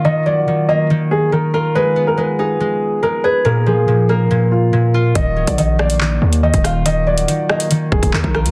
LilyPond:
<<
  \new Staff \with { instrumentName = "Grand piano" } { \time 4/4 \key ees \minor \tempo 4 = 141 ees''8 d''4 ees''8 r8 aes'8 bes'8 bes'8 | ces''8. bes'16 ces''8 aes'4. bes'8 ces''8 | bes'8 aes'4 bes'8 r8 f'4. | ees''8. d''16 ees''8 d''4. ees''8 f''8 |
ees''8 d''4 ees''8 r8 aes'8 bes'8 bes'8 | }
  \new Staff \with { instrumentName = "Harp" } { \clef bass \time 4/4 \key ees \minor <ees f'>8 ges8 ees8 bes8 ees4 ees8 f'8 | aes8 ces'8 aes8 ees'8 aes4 aes8 aes'8 | bes,8 f8 bes,8 bes8 bes,4 bes,8 f'8 | r8 ges8 ees8 bes8 ees4 ees8 f'8 |
ees8 ges8 ees8 bes8 ees4 ees8 f'8 | }
  \new Staff \with { instrumentName = "808-style bass" } { \clef bass \time 4/4 \key ees \minor r1 | r1 | r1 | ees,,8 d,,16 bes,,4.~ bes,,16 ees,8. ees,,8.~ |
ees,,4 r4. d,,16 ees,,16 ees,16 bes,,8 ees,16 | }
  \new DrumStaff \with { instrumentName = "Drums" } \drummode { \time 4/4 r4 r4 r4 r4 | r4 r4 r4 r4 | r4 r4 r4 r4 | <hh bd>8. <hh bd>16 hh8 ss16 hh16 hc8. hh16 r16 <hh bd>16 <hh ss>8 |
hh8. hh16 hh8 ss16 hh16 hh8 bd16 <hh bd>16 hc16 bd16 ss16 hh16 | }
>>